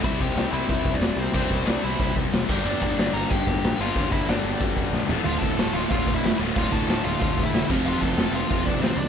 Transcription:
<<
  \new Staff \with { instrumentName = "Lead electric guitar" } { \time 4/4 \key c \mixolydian \tempo 4 = 184 <e' e''>8 <g' g''>4 <e' e''>8 <e' e''>8. <d' d''>8. <c' c''>8~ | <c' c''>4 <d' d''>8 <e' e''>4 r4. | <d' d''>8 <d' d''>4 <bes' bes''>8 <g' g''>4. <f' f''>8~ | <f' f''>8 <e' e''>8 <d' d''>4 r2 |
<f' f''>8 <a' a''>4 <f' f''>8 <f' f''>8. <e' e''>8. r8 | <f' f''>8 <a' a''>4 <f' f''>8 <f' f''>8. <e' e''>8. r8 | <f' f''>8 <a' a''>4 <f' f''>8 <f' f''>8 <d' d''>8 <c' c''>8 <d' d''>8 | }
  \new Staff \with { instrumentName = "Distorted electric guitar" } { \time 4/4 \key c \mixolydian <c g c' e' g' c''>4. <c g c' e' g' c''>2~ <c g c' e' g' c''>8 | <c g c' e' g' c''>4. <c g c' e' g' c''>2 <g, d g bes d' g'>8~ | <g, d g bes d' g'>4 <g, d g bes d' g'>2~ <g, d g bes d' g'>8 <g, d g bes d' g'>8~ | <g, d g bes d' g'>4 <g, d g bes d' g'>2~ <g, d g bes d' g'>8 <d, a, d a f'>8~ |
<d, a, d a f'>4 <d, a, d a f'>2~ <d, a, d a f'>8 <d, a, d a f'>8~ | <d, a, d a f'>4 <d, a, d a f'>2~ <d, a, d a f'>8 <f, c f a c' f'>8~ | <f, c f a c' f'>4 <f, c f a c' f'>2~ <f, c f a c' f'>8 r8 | }
  \new Staff \with { instrumentName = "Distorted electric guitar" } { \clef bass \time 4/4 \key c \mixolydian <c g c'>1 | <c g c'>2.~ <c g c'>8 <g, d g>8~ | <g, d g>2.~ <g, d g>8 <g, d g>8~ | <g, d g>2.~ <g, d g>8 <d, a, d>8~ |
<d, a, d>2.~ <d, a, d>8 <d, a, d>8~ | <d, a, d>2.~ <d, a, d>8 <f, c f>8~ | <f, c f>2.~ <f, c f>8 r8 | }
  \new Staff \with { instrumentName = "Distorted electric guitar" } { \clef bass \time 4/4 \key c \mixolydian r1 | r1 | r1 | r1 |
<d, a, d>4. <d, a, d>2~ <d, a, d>8 | <d, a, d>4. <d, a, d>2 <f, c f>8~ | <f, c f>4 <f, c f>2~ <f, c f>8 r8 | }
  \new Staff \with { instrumentName = "Picked electric bass" } { \clef bass \time 4/4 \key c \mixolydian c,8 c,8 c,8 c,8 c,8 c,8 e,,8 c,8 | c,8 c,8 c,8 c,8 c,8 c,8 e,,8 g,,8 | g,,8 g,,8 g,,8 g,,8 g,,8 g,,8 bes,,8 g,,8 | g,,8 g,,8 g,,8 g,,8 g,,8 g,,8 bes,,8 d,,8 |
d,,8 d,,8 d,,8 d,,8 d,,8 d,,8 f,,8 d,,8 | d,,8 d,,8 d,,8 d,,8 d,,8 d,,8 f,,8 f,,8 | f,,8 f,,8 f,,8 f,,8 f,,8 f,,8 a,,8 cis,8 | }
  \new DrumStaff \with { instrumentName = "Drums" } \drummode { \time 4/4 <cymc bd>8 bd8 <cymc sn>4 <cymc bd>8 bd8 <cymc sn>4 | <cymc bd>8 bd8 <cymc sn>4 <cymc bd>8 bd8 <cymc sn>8 <cymc bd>8 | cymc8 bd8 <cymc sn>4 <cymc bd>8 bd8 <cymc sn>4 | <cymc bd>8 bd8 <cymc sn>4 <cymc bd>8 bd8 sn8 tomfh8 |
cymc8 bd8 <cymc sn>4 <cymc bd>8 bd8 <cymc sn>4 | <cymc bd>8 bd8 <cymc sn>4 <cymc bd>8 bd8 <cymc sn>8 <cymc bd>8 | cymc8 bd8 <cymc sn>4 <cymc bd>8 bd8 <cymc sn>4 | }
>>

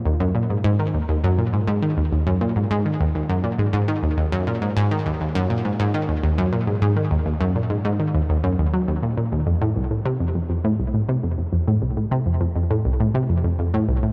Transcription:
\new Staff \with { instrumentName = "Synth arpeggio sound" } { \clef bass \time 4/4 \key ees \dorian \tempo 4 = 102 ees,16 ges,16 bes,16 aes,16 aes,16 ees16 ees,16 ees,16 ges,16 bes,16 aes,16 aes,16 ees16 ees,16 ees,16 ges,16 | bes,16 aes,16 aes,16 ees16 ees,16 ees,16 ges,16 bes,16 aes,16 aes,16 ees16 ees,16 ees,16 ges,16 bes,16 aes,16 | aes,16 ees16 ees,16 ees,16 ges,16 bes,16 aes,16 aes,16 ees16 ees,16 ees,16 ges,16 bes,16 aes,16 aes,16 ees16 | ees,16 ees,16 ges,16 bes,16 aes,16 aes,16 ees16 ees,16 ees,16 ges,16 ees,16 ges16 ees,16 bes,16 bes,16 ees,16 |
f,16 a,16 c,16 a,16 c16 f,16 f,16 f,16 a,16 c,16 a,16 c16 f,16 f,16 f,16 a,16 | c,16 a,16 c16 f,16 f,16 f,16 a,16 c,16 a,16 c16 f,16 f,16 f,16 a,16 c,16 a,16 | }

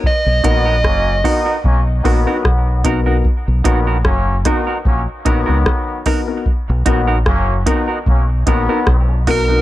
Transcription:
<<
  \new Staff \with { instrumentName = "Lead electric guitar" } { \time 4/4 \key b \major \tempo 4 = 75 dis''2. r4 | r1 | r2. r8 ais'8 | }
  \new Staff \with { instrumentName = "Clean electric guitar" } { \time 4/4 \key b \major r8 <dis' fis' ais'>16 <dis' fis' ais'>16 r8 <dis' fis' ais'>16 <dis' fis' ais'>16 r8 <dis' fis' ais'>16 <dis' fis' ais'>16 r8 <dis' fis' ais'>16 <dis' fis' ais'>16 | r8 <dis' fis' ais'>16 <dis' fis' ais'>16 r8 <dis' fis' ais'>16 <dis' fis' ais'>16 r8 <dis' fis' ais'>16 <dis' fis' ais'>16 r8 <dis' fis' ais'>16 r16 | r8 <dis' fis' ais'>16 <dis' fis' ais'>16 r8 <dis' fis' ais'>16 <dis' fis' ais'>16 r8 <dis' fis' ais'>16 <dis' fis' ais'>16 r8 <dis' fis' ais'>16 <dis' fis' ais'>16 | }
  \new Staff \with { instrumentName = "Upright piano" } { \time 4/4 \key b \major r8 <b dis' fis' ais'>16 r8. <b dis' fis' ais'>16 r8. <b dis' fis' ais'>16 <b dis' fis' ais'>16 r8 <b dis' fis' ais'>16 <b dis' fis' ais'>16 | r8 <b dis' fis' ais'>16 r8. <b dis' fis' ais'>16 r8. <b dis' fis' ais'>16 <b dis' fis' ais'>16 r8 <b dis' fis' ais'>16 <b dis' fis' ais'>16 | r8 <b dis' fis' ais'>16 r8. <b dis' fis' ais'>16 r8. <b dis' fis' ais'>16 <b dis' fis' ais'>16 r8 <b dis' fis' ais'>16 <b dis' fis' ais'>16 | }
  \new Staff \with { instrumentName = "Trombone section" } { \time 4/4 \key b \major r8 <dis fis b>8 <fis ais cis'>8 <dis b dis'>8 <fis ais cis'>16 r16 <dis fis b>4 r8 | r8 <dis fis b>8 <fis ais cis'>8 <dis b dis'>8 <fis ais cis'>16 r16 <dis fis b>4 r8 | r8 <dis fis b>8 <fis ais cis'>8 <dis b dis'>8 <fis ais cis'>16 r16 <dis fis b>4 r8 | }
  \new Staff \with { instrumentName = "Fingered electric bass" } { \clef bass \time 4/4 \key b \major r16 b,,16 ais,,8 fis,,8 r8 b,,8 ais,,16 r16 b,,4 | r16 b,,16 ais,,8 fis,,8 r8 ais,,16 r16 ais,,16 cis,16 r4 | r16 b,,16 ais,,8 fis,,8 r8 b,,8 ais,,16 r16 b,,4 | }
  \new DrumStaff \with { instrumentName = "Drums" } \drummode { \time 4/4 bd8 <hh bd>8 <bd ss>8 <hho bd>8 bd8 <hho bd>8 <bd ss>8 <hh bd>8 | bd8 <hh bd>8 <bd ss>8 <hh bd ss>8 bd8 <hh bd>8 <bd ss>8 <hho bd>8 | bd8 <hh bd>8 <bd ss>8 <hh bd>8 bd8 <hh bd>8 <bd ss>8 <hho bd>8 | }
>>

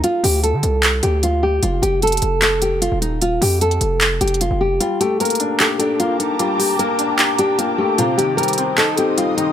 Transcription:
<<
  \new Staff \with { instrumentName = "Ambient pad" } { \time 4/4 \key g \minor \tempo 4 = 151 r1 | r1 | r1 | <g'' a'' bes'' d'''>1~ |
<g'' a'' bes'' d'''>1 | <g' ees'' c''' ees'''>1 | }
  \new Staff \with { instrumentName = "Nylon-string guitar" } { \time 4/4 \key g \minor f'8 g'8 a'4 r8 g'8 f'8 g'8 | f'8 g'8 a'4 a'8 g'8 f'8 ees'8 | f'8 g'8 a'4 r8 g'8 f'8 g'8 | f'8 g'8 bes'4 a'8 g'8 f'8 ees'8 |
f'8 g'8 bes'4 r8 g'8 f'8 g'8 | f'8 g'8 bes'4 a'8 g'8 f'8 ees'8 | }
  \new Staff \with { instrumentName = "Felt piano" } { \time 4/4 \key g \minor r1 | r1 | r1 | g8 a8 bes8 d'8 g'8 d'8 bes4 |
g4 bes8 d'8 g'8 d'8 bes8 a8 | c8 ees8 g8 c'8 ees'8 c'8 g8 ees8 | }
  \new Staff \with { instrumentName = "808-style bass" } { \clef bass \time 4/4 \key g \minor r8 d,8. d16 c,4 d,4. | f,,8 f,,4 f,,4.~ f,,16 ees,,8.~ | ees,,8 f,4 f,,4 f,,8. f,,8. | r1 |
r1 | r1 | }
  \new DrumStaff \with { instrumentName = "Drums" } \drummode { \time 4/4 hh8 hho8 hh8 hh8 <hc hh>8 hh8 hh4 | hh8 hh8 hh32 hh32 hh32 hh32 hh8 <hc hh>8 hh8 hh8 hh8 | hh8 hho8 hh16 hh16 hh8 \tuplet 3/2 { <hc hh>16 r16 r16 hh16 hh16 hh16 } hh4 | hh8 hh8 hh32 hh32 hh32 hh32 hh8 <hc hh>8 hh8 hh8 hh8 |
hh8 hho8 hh8 hh8 <hc hh>8 hh8 hh4 | hh8 hh8 hh32 hh32 hh32 hh32 hh8 <hc hh>8 hh8 hh8 hh8 | }
>>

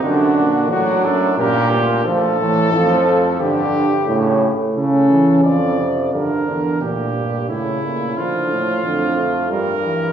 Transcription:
<<
  \new Staff \with { instrumentName = "Trumpet" } { \time 3/4 \key g \minor \tempo 4 = 89 fis'4 fis'8 a'8 bes'8 f'8 | a'2 g'4~ | g'8 r8 a'4 d''4 | r2. |
r2. | }
  \new Staff \with { instrumentName = "Trumpet" } { \time 3/4 \key g \minor d'4 d'4 g'4 | r2. | r2. | bes'4 g'4 e'4 |
f'2 bes'4 | }
  \new Staff \with { instrumentName = "Trombone" } { \clef bass \time 3/4 \key g \minor d4 fis4 bes,4 | f8 e8 f4 d4 | cis8 r8 cis8 e8 f8 c8 | d8 d8 bes,4 cis4 |
f4 d8 a8 g8 e8 | }
  \new Staff \with { instrumentName = "Euphonium" } { \clef bass \time 3/4 \key g \minor fis,8 bes,8 a,8 fis,8 g,8 d,8 | d,8 a,8 f,4 g,4 | a,8 r8 cis4 f,4 | g,8 e,8 d,8 g,8 a,8 bes,8 |
d8 a,8 f,4 g,4 | }
>>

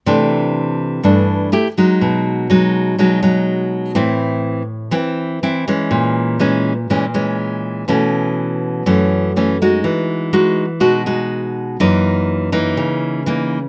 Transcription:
\new Staff \with { instrumentName = "Nylon-string guitar" } { \clef bass \time 4/4 \key b \mixolydian \tempo 4 = 123 << { <e a d'>2 <e a d'>4 <a e' g'>8 <fis gis dis'>8~ | <fis gis dis'>4 <fis gis dis'>4 <fis gis dis'>8 <fis gis dis'>4. | <e c' e'>4. r8 <e c' e'>4 <e c' e'>8 <e gis cis'>8~ | <e gis cis'>4 <e gis cis'>8 r8 <e gis cis'>8 <e gis cis'>4. |
<e a cis'>2 <e a cis'>4 <e a cis'>8 <gis dis' fis'>8~ | <gis dis' fis'>4 <gis dis' fis'>8 r8 <gis dis' fis'>8 <gis dis' fis'>4. | <e ais dis'>4. <e ais dis'>4. <e ais dis'>8 r8 | } \\ { c2 g,4 r4 | b,2 b,2 | a,2 e2 | ais,2 ais,2 |
b,2 fis,2 | e2 b,2 | fis,2 cis2 | } >> }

